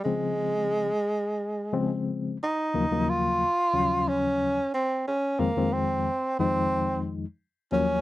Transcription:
<<
  \new Staff \with { instrumentName = "Tenor saxophone" } { \time 4/4 \key des \major \tempo 4 = 90 aes2. r8 ees'8~ | \key ees \dorian ees'8 f'4. des'4 c'8 des'8 | bes8 c'4 c'4 r4 des'8 | }
  \new Staff \with { instrumentName = "Reed electric piano" } { \clef bass \time 4/4 \key des \major <des f aes c'>4~ <des f aes c'>16 r4 r16 <des f aes c'>4 r8 | \key ees \dorian <ees, des f ges bes>16 <ees, des f ges bes>8. r8 <ees, des f ges des'>4~ <ees, des f ges des'>16 r4 r16 | <f, ees f aes c'>16 <f, ees f aes c'>8. r8 <f, ees f aes ees'>4~ <f, ees f aes ees'>16 r8. <ees, f ges bes des'>8 | }
>>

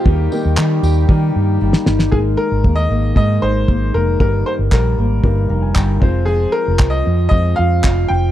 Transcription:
<<
  \new Staff \with { instrumentName = "Upright piano" } { \time 4/4 \key aes \major \tempo 4 = 116 g'2. r4 | aes'8 bes'8. ees''8. ees''8 c''4 bes'8 | bes'8 c''8 bes'2~ bes'8 r8 | aes'8 bes'8. ees''8. ees''8 f''4 g''8 | }
  \new Staff \with { instrumentName = "Upright piano" } { \time 4/4 \key aes \major << { r1 | r1 | r2 r8 bes''16 aes''16 g''8 f''8 | r1 | } \\ { <g bes ees' bes'>8 <g bes ees' bes'>4. <g bes ees' bes'>2 | <aes bes ees' bes'>2 <aes bes ees' bes'>2 | <g bes ees' bes'>2 <g bes ees' bes'>4. <aes c' f' c''>8~ | <aes c' f' c''>4. r8 <aes c' f' ees''>2 | } >> }
  \new Staff \with { instrumentName = "Nylon-string guitar" } { \time 4/4 \key aes \major <ees g'>8 bes8 g8 g'8 ees4 g8 ees'8 | <aes aes'>4 bes8 bes8 aes8 ees'8 bes8 bes8 | <g, g'>4 g8 bes8 g,8 ees'8 g8 f8 | <f aes'>4 c'8 c'8 f8 f'8 c'8 c'8 | }
  \new Staff \with { instrumentName = "Harmonium" } { \clef bass \time 4/4 \key aes \major <ees g bes g'>1 | r1 | r1 | r1 | }
  \new Staff \with { instrumentName = "Fingered electric bass" } { \clef bass \time 4/4 \key aes \major ees,8 r16 ees,16 ees8 ees,8 ees8 g,8 g,,16 r16 g,,8 | aes,,8 r16 aes,,16 ees,8 aes,,8 aes,8 aes,,8 aes,,8 f,,8 | g,,8 r16 g,,16 bes,,8 aes,,8 g,,8 f,,8 g,,8 f,,8~ | f,,8 r16 f,,16 c,8 f,8 f,8 f,8 f,,8 f,,8 | }
  \new DrumStaff \with { instrumentName = "Drums" } \drummode { \time 4/4 bd8 tamb8 hc8 tamb8 bd4 r16 sn16 sn16 sn16 | bd4 bd4 bd4 bd4 | bd4 <hc bd>4 bd4 <hc bd>8 bd8 | r4 <hc bd>4 bd4 <hc bd>4 | }
>>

